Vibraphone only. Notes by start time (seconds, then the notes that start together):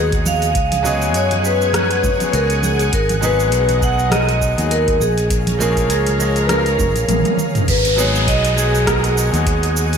Already playing: G#4
0.27 F5
0.86 D#5
1.16 C#5
1.46 B4
2.35 A#4
2.64 G#4
2.94 A#4
3.24 B4
3.83 F#5
4.13 D#5
4.71 A#4
5.01 G#4
5.60 A#4
5.90 G#4
6.44 B4
6.50 A#4
7.69 B4
7.98 C#5
8.28 D#5
8.57 G#4